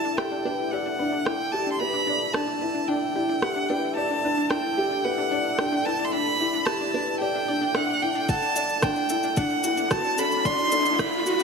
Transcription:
Already playing: felt piano D4 E4, ambient pad E4 A4 D5 E5, violin A5
0.05 synth arpeggio sound D4
0.17 felt piano G4, synth arpeggio sound B4, violin G5, cross-stick
0.32 synth arpeggio sound D4
0.45 synth arpeggio sound D4, felt piano B4
0.71 synth arpeggio sound G4, felt piano D5, violin F#5
0.86 synth arpeggio sound D4
0.99 felt piano D4, synth arpeggio sound B4
1.12 synth arpeggio sound D4
1.25 synth arpeggio sound D4, felt piano E4, violin G5, cross-stick
1.52 synth arpeggio sound G4, felt piano G4, violin A5
1.67 synth arpeggio sound D4
1.72 violin C6
1.79 synth arpeggio sound B4, felt piano B4, violin B5
1.94 synth arpeggio sound D4
2.07 synth arpeggio sound D4, felt piano D5
2.33 felt piano D4, synth arpeggio sound G4, violin A5, cross-stick
2.48 synth arpeggio sound D4
2.61 felt piano E4, synth arpeggio sound B4
2.75 synth arpeggio sound D4
2.88 synth arpeggio sound D4, felt piano D4, violin G5
3.16 felt piano E4, synth arpeggio sound G4
3.29 synth arpeggio sound D4
3.42 felt piano G4, synth arpeggio sound B4, violin F#5, cross-stick
3.56 synth arpeggio sound D4
3.69 synth arpeggio sound D4, felt piano B4, violin G5
3.95 synth arpeggio sound G4, felt piano D5, violin A5
4.11 synth arpeggio sound D4
4.24 felt piano D4, synth arpeggio sound B4
4.38 synth arpeggio sound D4
4.50 synth arpeggio sound D4, felt piano E4, violin G5, cross-stick
4.78 synth arpeggio sound G4, felt piano G4
4.91 synth arpeggio sound D4
5.04 synth arpeggio sound B4, felt piano B4, violin F#5
5.18 synth arpeggio sound D4
5.31 synth arpeggio sound D4, felt piano D5
5.58 felt piano D4, synth arpeggio sound G4, violin G5, cross-stick
5.73 synth arpeggio sound D4
5.85 felt piano E4, synth arpeggio sound B4, violin A5
5.99 synth arpeggio sound D4
6.05 violin C6
6.12 felt piano D4, synth arpeggio sound D4, violin B5
6.40 felt piano E4, synth arpeggio sound G4
6.54 synth arpeggio sound D4
6.65 felt piano G4, synth arpeggio sound B4, violin A5, cross-stick
6.81 synth arpeggio sound D4
6.94 synth arpeggio sound D4, felt piano B4
7.20 synth arpeggio sound G4, felt piano D5, violin G5
7.35 synth arpeggio sound D4
7.48 felt piano D4, synth arpeggio sound D5
7.62 synth arpeggio sound D4
7.75 felt piano D4, synth arpeggio sound E5, violin F#5, cross-stick
8.02 synth arpeggio sound D4, felt piano E4, violin G5
8.15 synth arpeggio sound D4
8.29 ambient pad E4, synth arpeggio sound A4, felt piano F#5, violin A5, kick, riser, shaker
8.38 synth arpeggio sound D4, ambient pad D5
8.42 shaker
8.49 ambient pad A4
8.56 synth arpeggio sound D4, felt piano D5, shaker
8.69 shaker
8.82 felt piano D4, synth arpeggio sound F#4, violin G5, kick, cross-stick, shaker
8.96 synth arpeggio sound D4, shaker
9.09 felt piano E4, synth arpeggio sound A4, shaker
9.23 synth arpeggio sound D4, shaker
9.32 ambient pad F#5
9.37 felt piano D4, synth arpeggio sound D4, violin F#5, kick, shaker
9.50 shaker
9.63 felt piano E4, synth arpeggio sound F#4, shaker
9.77 synth arpeggio sound D4, shaker
9.91 felt piano F#4, synth arpeggio sound A4, violin A5, kick, cross-stick, shaker
10.04 synth arpeggio sound D4, shaker
10.18 synth arpeggio sound D4, felt piano A4, violin B5, shaker
10.32 shaker
10.45 synth arpeggio sound F#4, felt piano D5, violin C6, kick, shaker
10.58 synth arpeggio sound D4, shaker
10.72 felt piano D4, synth arpeggio sound A4, shaker
10.85 synth arpeggio sound D4, shaker
10.99 synth arpeggio sound D4, felt piano E4, violin B5, kick, cross-stick, shaker
11.13 shaker
11.26 felt piano F#4, synth arpeggio sound F#4, shaker
11.40 shaker

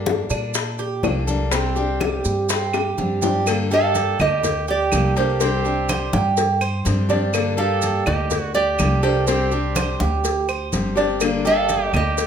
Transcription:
Already playing: upright bass G2, steel-string acoustic guitar G3 A#3 D4 A4
0.06 high bongo, high conga, maracas
0.30 upright bass A#2, cuban tres D4, high bongo, high conga, claves, maracas
0.54 muted steel-string acoustic guitar stroke, high bongo, high conga, maracas
0.79 cuban tres G4, high bongo, high conga, maracas
1.03 upright bass C2, steel-string acoustic guitar G3 A#3 D4 A4, cuban tres D4, high bongo, low bongo, high conga, claves, maracas
1.27 steel-string acoustic guitar G3 A#3 D4 A4, high conga, maracas
1.51 steel-string acoustic guitar C3 G3 C4 D4 G4, cuban tres C4, high bongo, high conga, maracas
1.76 steel-string acoustic guitar G3 C4 D4 G4, high bongo, high conga, maracas
2.00 cuban tres G4, high bongo, high conga, claves, maracas
2.25 upright bass G2, high bongo, high conga, maracas
2.49 cuban tres C4, muted steel-string acoustic guitar stroke, high bongo, high conga, maracas
2.73 cuban tres G4, high bongo, high conga, claves, maracas
2.98 upright bass G2, steel-string acoustic guitar G3 C4 D4 G4, high conga, maracas
3.22 steel-string acoustic guitar G3 C4 D4 G4, cuban tres G4, low bongo, high conga, maracas
3.46 steel-string acoustic guitar D3 G3 A#3 D4 A4, cowbell, high conga, claves, maracas
3.71 steel-string acoustic guitar G3 A#3 D4 A4, cuban tres G4, trumpet A4, nylon-string guitar F5, high conga, maracas
3.95 cowbell, high conga, maracas
4.19 upright bass D2, trumpet G4, nylon-string guitar D#5, cowbell, high conga, low conga, claves, maracas
4.43 muted steel-string acoustic guitar stroke, cowbell, high conga, low conga, maracas
4.68 cuban tres G4, trumpet G4, nylon-string guitar D5, high conga, maracas
4.92 upright bass C2, steel-string acoustic guitar G3 A#3 D4 A4, cowbell, high conga, claves, maracas
5.16 steel-string acoustic guitar G3 A#3 D4 A4, trumpet G4, cuban tres G4, nylon-string guitar C5, cowbell, high conga, maracas
5.40 steel-string acoustic guitar C3 G3 C4 D4 G4, cuban tres C4, cowbell, high conga, maracas
5.64 steel-string acoustic guitar G3 C4 D4 G4, high conga, maracas
5.89 cuban tres C5, cowbell, high conga, claves, maracas
6.13 upright bass G2, cuban tres G4, high conga, maracas
6.37 muted steel-string acoustic guitar stroke, cowbell, high conga, maracas
6.61 cuban tres C5, high conga, claves, maracas
6.85 upright bass G2, steel-string acoustic guitar G3 C4 D4 G4, cowbell, high conga, maracas
7.09 steel-string acoustic guitar G3 C4 D4 G4, cuban tres D4, cowbell, high conga, maracas
7.33 steel-string acoustic guitar D3 G3 A#3 D4 A4, cowbell, high conga, claves, maracas
7.57 steel-string acoustic guitar G3 A#3 D4 A4, cuban tres G4, trumpet A4, nylon-string guitar F5, high conga, maracas
7.82 cowbell, high conga, maracas
8.06 upright bass D2, trumpet G4, nylon-string guitar D#5, cowbell, high conga, low conga, claves, maracas
8.30 muted steel-string acoustic guitar stroke, cowbell, high conga, low conga, maracas
8.40 trumpet F#4, nylon-string guitar D5
8.54 cuban tres G4, trumpet G4, nylon-string guitar D5, high conga, maracas
8.79 upright bass C2, steel-string acoustic guitar G3 A#3 D4 A4, cowbell, high conga, claves, maracas
9.03 steel-string acoustic guitar G3 A#3 D4 A4, cuban tres G4, trumpet G4, nylon-string guitar C5, cowbell, high conga, maracas
9.27 steel-string acoustic guitar C3 G3 C4 D4 G4, cuban tres C4, cowbell, high conga, maracas
9.51 steel-string acoustic guitar G3 C4 D4 G4, high conga, maracas
9.76 cuban tres C5, cowbell, high conga, claves, maracas
10.00 upright bass D2, cuban tres G4, high conga, maracas
10.24 muted steel-string acoustic guitar stroke, cowbell, high conga, maracas
10.49 cuban tres C5, high conga, claves, maracas
10.72 upright bass G1, steel-string acoustic guitar G3 C4 D4 G4, cowbell, high conga, maracas
10.95 steel-string acoustic guitar G3 C4 D4 G4, cuban tres D4, cowbell, maracas
11.20 steel-string acoustic guitar D3 G3 A#3 D4 A4, cowbell, high conga, claves, maracas
11.45 steel-string acoustic guitar G3 A#3 D4 A4, cuban tres G4, trumpet A4, nylon-string guitar F5, high conga, maracas
11.69 cowbell, high conga, maracas
11.93 upright bass D2, trumpet G4, nylon-string guitar D#5, cowbell, high conga, low conga, claves, maracas
12.17 muted steel-string acoustic guitar stroke, cowbell, high conga, maracas

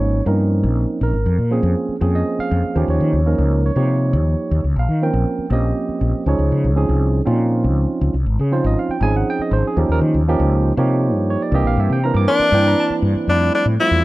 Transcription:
Already playing: fretless electric bass G#1, tine electric piano F3 G#3 A#3 C#4 D#4 C#5
0.26 fretless electric bass G2, tine electric piano F3 A#3 C4 C#4 D#4 A#4
0.64 fretless electric bass A#1
1.01 fretless electric bass A#1, tine electric piano A#4
1.13 fretless electric bass G#1
1.26 fretless electric bass F2
1.38 fretless electric bass A#2
1.51 tine electric piano F3 A#3 C4 C#4 G#4
1.63 fretless electric bass F2
1.89 muted fretless electric bass stroke
2.01 fretless electric bass F2, tine electric piano F3 A#3 C4 C#4 G#4
2.15 tine electric piano D#5
2.39 tine electric piano F5, muted fretless electric bass stroke
2.51 fretless electric bass F2
2.63 muted fretless electric bass stroke
2.76 fretless electric bass D#2, tine electric piano F3 A#3 C#4 D#4 G4
2.88 fretless electric bass D#2, tine electric piano C#5
3.00 fretless electric bass D#3
3.13 fretless electric bass D#2
3.25 tine electric piano F3 A#3 C#4 D#4 A#4
3.38 fretless electric bass C#2
3.66 tine electric piano C#5
3.76 fretless electric bass C3, tine electric piano F3 A#3 D#4 G4 C#5
4.13 fretless electric bass D#2
4.51 fretless electric bass D#2
4.64 fretless electric bass C#2
4.76 fretless electric bass A#1, tine electric piano F5
4.89 fretless electric bass D#3
5.02 tine electric piano F3 A#3 C4 C#4 A#4 G5
5.13 fretless electric bass A#1
5.38 muted fretless electric bass stroke
5.50 fretless electric bass A#1, tine electric piano F3 A#3 C4 C#4 G4 D#5
5.89 muted fretless electric bass stroke
6.01 fretless electric bass A#1
6.13 muted fretless electric bass stroke
6.26 fretless electric bass C#2, tine electric piano F3 G#3 C#4 D#4 G#4 C#5
6.39 fretless electric bass C#2
6.52 fretless electric bass C#3
6.64 fretless electric bass C#2
6.76 tine electric piano F3 C4 C#4 D#4 G#4
6.89 fretless electric bass C2
7.25 fretless electric bass A#2, tine electric piano F3 C4 C#4 D#4 F4
7.64 fretless electric bass C#2
8.01 fretless electric bass C#2
8.14 fretless electric bass C2
8.26 fretless electric bass G#1
8.39 fretless electric bass C#3, tine electric piano G#4
8.51 tine electric piano F3 C4 C#4 D#4 F4 C5
8.64 fretless electric bass G#1, tine electric piano D#5
8.79 tine electric piano F5
8.89 tine electric piano G5, muted fretless electric bass stroke
9.01 fretless electric bass G#1, tine electric piano F3 C4 C#4 D#4 G#4 G#5
9.17 tine electric piano F#5
9.30 tine electric piano G5
9.39 tine electric piano D#5, muted fretless electric bass stroke
9.51 fretless electric bass G#1, tine electric piano C5
9.64 tine electric piano G#4, muted fretless electric bass stroke
9.77 fretless electric bass D#2, tine electric piano F3 A#3 C#4 D#4 G4
9.89 fretless electric bass D#2, tine electric piano A#4
10.01 fretless electric bass D#3
10.14 fretless electric bass D#2
10.28 tine electric piano F3 A#3 C#4 D#4 G4
10.40 fretless electric bass C#2
10.77 fretless electric bass C3, tine electric piano F3 A#3 D#4 G4 C#5
11.14 fretless electric bass G2
11.30 tine electric piano C#5
11.42 tine electric piano D5
11.52 fretless electric bass C2, tine electric piano E3 A#3 C4 D4 G4 D#5
11.64 fretless electric bass A#1, tine electric piano F5
11.77 fretless electric bass G2, tine electric piano E5
11.90 fretless electric bass C3, tine electric piano G5
12.04 tine electric piano E3 A#3 C4 D4 A#4 A#5
12.14 fretless electric bass G2, tine electric piano D6
12.28 tenor saxophone D4, tine electric piano C6
12.39 tine electric piano E5, muted fretless electric bass stroke
12.52 fretless electric bass G2, tine electric piano E3 A#3 C4 D4 E4 G5
12.68 tine electric piano A#5
12.80 tine electric piano A5
12.90 muted fretless electric bass stroke
13.02 fretless electric bass G2
13.15 muted fretless electric bass stroke
13.28 fretless electric bass F2, tine electric piano F3 G3 A3 C4 E4, tenor saxophone D4
13.55 tenor saxophone D4
13.65 fretless electric bass A2
13.80 tine electric piano F3 G3 A3 C4 F4, tenor saxophone E4
13.91 fretless electric bass E2

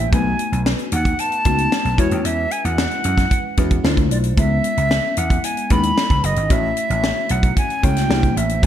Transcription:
Already playing: fm electric piano A#3 D4 E4 G4 C5, flute E5
0.12 slap bass B1, fm electric piano A3 B3 D#4 F#4 B4, flute G#5, kick, closed hi-hat
0.39 closed hi-hat
0.52 slap bass B1, closed hi-hat
0.66 snare
0.79 closed hi-hat
0.92 slap bass D#2, flute F#5, closed hi-hat
1.05 kick, closed hi-hat
1.19 flute A5, closed hi-hat
1.32 closed hi-hat
1.45 slap bass C#2, fm electric piano A3 B3 D#4 F#4 B4, kick, closed hi-hat
1.58 closed hi-hat
1.72 snare
1.85 slap bass B1, closed hi-hat
1.98 slap bass E2, fm electric piano G#3 C#4 E4 F#4 B4, flute C#5, kick, closed hi-hat
2.11 slap bass D#2, closed hi-hat
2.25 slap bass E2, flute E5, closed hi-hat
2.51 flute G#5, closed hi-hat
2.65 slap bass E2, flute F#5, closed hi-hat
2.78 snare
2.91 closed hi-hat
3.04 slap bass F#2, closed hi-hat
3.18 kick, snare, closed hi-hat
3.31 kick, closed hi-hat
3.57 slap bass E2, fm electric piano G#3 C#4 E4 F#4 B4, kick, closed hi-hat
3.71 kick, closed hi-hat
3.83 slap bass D2, fm electric piano A3 D4 E4 F4 C5, snare
3.97 kick, closed hi-hat
4.11 slap bass B1, flute D5, closed hi-hat
4.24 closed hi-hat
4.37 slap bass C#2, fm electric piano G#3 B3 C#4 E4 B4, flute E5, kick, closed hi-hat
4.64 closed hi-hat
4.77 slap bass C#2, closed hi-hat
4.91 snare
5.17 slap bass E2, flute F#5, closed hi-hat
5.30 kick, closed hi-hat
5.44 flute G#5, closed hi-hat
5.57 closed hi-hat
5.70 slap bass D#2, fm electric piano G#3 C#4 D#4 E4 B4, flute B5, kick, closed hi-hat
5.83 closed hi-hat
5.98 snare
6.10 slap bass C#2, kick, closed hi-hat
6.23 slap bass F#1, flute D#5, closed hi-hat
6.36 slap bass G#1, closed hi-hat
6.49 slap bass A1, fm electric piano A3 C#4 E4 F#4 C#5, flute E5, kick, closed hi-hat
6.77 closed hi-hat
6.90 slap bass A1, closed hi-hat
7.04 snare
7.29 slap bass B1, flute F#5, closed hi-hat
7.43 kick, closed hi-hat
7.57 flute G#5, kick, closed hi-hat
7.70 closed hi-hat
7.82 slap bass C#2, fm electric piano A3 C#4 E4 F#4 C#5, flute G5, kick, closed hi-hat
7.97 snare, closed hi-hat
8.09 slap bass C2, fm electric piano A#3 D4 E4 G4 C5, snare
8.23 kick, closed hi-hat
8.37 slap bass A1, flute E5, closed hi-hat
8.49 closed hi-hat
8.62 slap bass B1, fm electric piano A3 B3 D#4, kick, closed hi-hat

